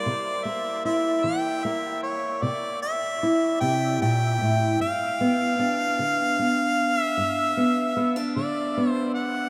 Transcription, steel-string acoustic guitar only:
\new Staff \with { instrumentName = "Steel-string acoustic guitar" } { \time 12/8 \key g \mixolydian \tempo 4. = 51 << { r8 bes8 e'4 bes4. r8 e'2 | r8 b8 d'4 b4. b8 b16 d'8. b4 | } \\ { c4 r8 e4 r8 c4 r8 c8 bes,8 a,8 | g,4 r8 d4 r8 g,4 r8 d4 r8 | } >> }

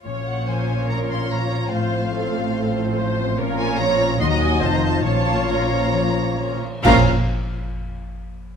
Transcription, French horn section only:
\new Staff \with { instrumentName = "French horn section" } { \time 4/4 \key bes \minor \tempo 4 = 141 << { des'1 | c'1 | des'4 des'4 ees'4 r4 | des'4 des'2~ des'8 r8 |
des'8 r2. r8 | } \\ { f1~ | f1 | f4 f4 ges4 f4 | f4 f2~ f8 r8 |
f8 r2. r8 | } >> }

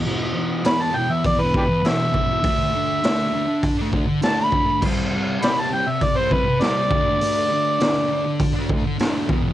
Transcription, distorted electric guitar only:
\new Staff \with { instrumentName = "Distorted electric guitar" } { \clef bass \time 4/4 \key d \mixolydian \tempo 4 = 101 <e, b, e>8 <e, b, e>8 <e, b, e>8 <e, b, e>8. <b, e>16 <e, b, e>8 <e, b, e>8 <e, b, e>16 <b, e>16 | <d a d'>8 <d a d'>8 <d a d'>8 <d a d'>8. <a d'>16 <d a d'>8 <d a d'>8 <d a d'>16 <a d'>16 | <c g c'>8 <c g c'>8 <c g c'>8 <c g c'>8. <g c'>16 <c g c'>8 <c g c'>8 <d a d'>16 <a d'>16 | <d a d'>8 <d a d'>8 <d a d'>8 <d a d'>8. <a d'>16 <d a d'>8 <d a d'>8 <e, b, e>16 <b, e>16 | }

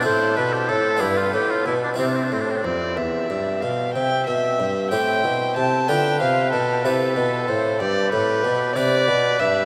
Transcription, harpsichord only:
<<
  \new Staff \with { instrumentName = "Harpsichord" } { \time 6/8 \key c \major \tempo 4. = 62 <c' e'>4. <b d' g'>4. | <c' e' g'>2. | r4. <c' e' g'>4. | <b d' f'>4. <e' g'>4. |
r4. <d' g'>4. | }
  \new Staff \with { instrumentName = "Harpsichord" } { \clef bass \time 6/8 \key c \major a,8 b,8 a,8 g,8 a,8 b,8 | c8 a,8 f,8 e,8 g,8 b,8 | c8 b,8 g,8 a,8 b,8 c8 | d8 c8 b,8 c8 b,8 a,8 |
g,8 a,8 b,8 c8 b,8 g,8 | }
>>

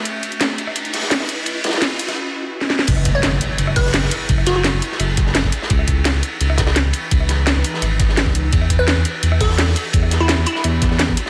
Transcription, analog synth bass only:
\new Staff \with { instrumentName = "Analog synth bass" } { \clef bass \time 4/4 \key fis \minor \tempo 4 = 170 r1 | r1 | fis,,8. fis,,8 fis,,16 r8 fis,,8. fis,,8 fis,,16 r8 | fis,,8. fis,,8 fis,,16 r8 fis,,8. fis,,8 fis,,16 r8 |
cis,8. cis,8 cis,16 r8 cis,8. cis,8 cis,16 r8 | cis,8. cis,8 cis,16 r8 gis,,8. gis,,8 cis,8. | e,8. e,8 e,16 r8 e,8. e,8 e,16 r8 | e,8. e,8 e,16 r8 e,8. e,8 e,16 r8 | }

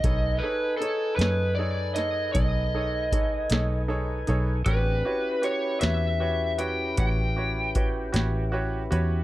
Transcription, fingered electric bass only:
\new Staff \with { instrumentName = "Fingered electric bass" } { \clef bass \time 12/8 \key b \dorian \tempo 4. = 52 b,,8 r4 fis,4. b,,4. b,,4 b,,8 | a,,8 r4 e,4. a,,4. a,,4 e,8 | }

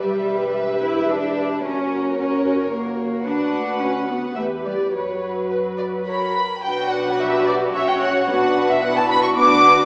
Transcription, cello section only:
\new Staff \with { instrumentName = "Cello section" } { \time 3/4 \key b \minor \tempo 4 = 110 g4. e'8 d'4 | cis'4 cis'4 ais4 | d'4 cis'8 b8 a8 g8 | fis2 r4 |
r4 g'4 fis'4~ | fis'4 e'4 d'4 | }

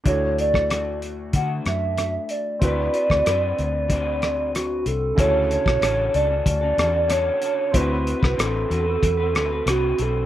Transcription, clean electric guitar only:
\new Staff \with { instrumentName = "Clean electric guitar" } { \time 4/4 \key d \major \tempo 4 = 94 <d a fis'>4 <d a fis'>4 <d a fis'>2 | <d c' fis' b'>8 <c' fis' b'>8 <d c' fis' b'>4 <d c' fis' b'>2 | <d cis' fis' a'>8. <cis' fis' a'>16 <d cis' fis' a'>8 <d cis' fis' a'>16 <cis' fis' a'>8 <cis' fis' a'>16 <d cis' fis' a'>16 <cis' fis' a'>16 <d cis' fis' a'>8 <d cis' fis' a'>8 | <d c' fis' b'>16 <c' fis' b'>8 <c' fis' b'>16 <d c' fis' b'>8 <d c' fis' b'>16 <c' fis' b'>8 <c' fis' b'>16 <d c' fis' b'>16 <c' fis' b'>16 <d c' fis' b'>8 <d c' fis' b'>8 | }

